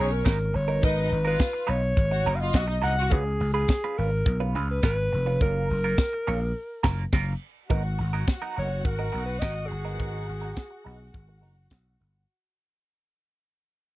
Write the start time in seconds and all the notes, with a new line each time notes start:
Already playing: F#3 B3 G#4
0.00 B1 C#4 D#4 A#4 C#5
0.11 A#4, muted clean electric guitar stroke
0.25 G#1 F#3 B3 D#4 A#4, kick, snare, closed hi-hat, tambourine
0.40 muted clean electric guitar stroke
0.54 G1 C#5, muted clean electric guitar stroke, open hi-hat
0.68 F#3 B3 D#4 A#4
0.82 G#1 F#3 B3 D#4 A#4 B4 D#5, kick, closed hi-hat
1.11 G#1, muted clean electric guitar stroke, open hi-hat
1.25 F#3 B3 D#4 F4 A#4 B4 F5
1.39 kick, snare, closed hi-hat, tambourine
1.53 muted clean electric guitar stroke
1.67 B1 F#3 B3 D#4 B4 C#5, open hi-hat
1.83 muted clean electric guitar stroke
1.97 G#1, kick, closed hi-hat
2.11 F#4 F#5, muted clean electric guitar stroke
2.26 F#1 F#3 B3 D#4 A#4, open hi-hat
2.35 F5
2.41 F4 D#5 F5
2.53 B1 F#4 F#5, kick, snare, closed hi-hat, tambourine
2.68 D#4 D#5, muted clean electric guitar stroke
2.82 C2 F#3 B3 D#4 A#4 D#5 F#5, open hi-hat
2.97 F#4 F#5, muted clean electric guitar stroke
3.11 C#2 G#3 C#4 F4 G#4 B4, kick, closed hi-hat
3.25 muted clean electric guitar stroke
3.40 C#2, muted clean electric guitar stroke, open hi-hat
3.53 G#3 C#4 F4 G#4 B4
3.68 kick, snare, closed hi-hat, tambourine
3.84 G#3 C#4 F4 B4
3.98 G#1 G#3 C#4 F4 A#4 B4, open hi-hat
4.25 B1, muted clean electric guitar stroke, kick, closed hi-hat
4.40 G#3 C#4 F4 B4
4.55 C#2 G#3 C#4 F4 B4, open hi-hat
4.71 B4
4.83 G#1 G#3 C#4 F4 B4, kick, snare, closed hi-hat, tambourine
4.98 muted clean electric guitar stroke
5.12 F1, muted clean electric guitar stroke, open hi-hat
5.26 G#3 C#4 F4 B4
5.41 F#1 A#3 C#4 F4 A#4, kick, closed hi-hat
5.70 F#1, muted clean electric guitar stroke, open hi-hat
5.84 A#3 C#4 F4 A#4
5.97 kick, snare, closed hi-hat, tambourine
6.13 muted clean electric guitar stroke
6.27 A#1 A#3 C#4 F4 C#5, open hi-hat
6.41 muted clean electric guitar stroke
6.83 F#1 A#3 C#4 F4 A#4, kick, snare, crash
7.13 F#1 A#3 C#4 F4 A#4, kick, snare, crash
7.70 G#1 F#3 B3 D#4 F#4 A#4 F#5, kick, closed hi-hat
7.84 muted clean electric guitar stroke
7.98 G#1, muted clean electric guitar stroke, open hi-hat
8.13 F#3 B3 D#4 A#4
8.27 kick, snare, closed hi-hat, tambourine
8.42 F#3 B3 D#4 A#4
8.56 F#1 F#3 B3 D#4 A#4 C#5, open hi-hat
8.69 muted clean electric guitar stroke
8.84 G#1 A#4, muted clean electric guitar stroke, kick, closed hi-hat
8.99 F#3 B3 D#4 A#4
9.12 B1 F#3 B3 D#4 A#4, open hi-hat
9.26 B4
9.39 G#1 F#3 B3 D#4 A#4 D#5, kick, snare, closed hi-hat, tambourine
9.67 G#4, muted clean electric guitar stroke
9.71 G1, open hi-hat
9.85 F#3 B3 D#4 A#4
9.99 G#1 F#3 B3 D#4 A#4, kick, closed hi-hat
10.29 G#1, open hi-hat
10.41 F#3 B3 D#4 A#4
10.56 kick, snare, closed hi-hat, tambourine
10.71 muted clean electric guitar stroke
10.84 B1 F#3 B3 D#4 B4, open hi-hat
11.14 G#1, kick, closed hi-hat
11.28 muted clean electric guitar stroke
11.41 F#1 F#3 B3 D#4 A#4, open hi-hat
11.70 B1, kick, snare, closed hi-hat, tambourine
11.85 muted clean electric guitar stroke
11.99 G1 F#3 B3 D#4 A#4, open hi-hat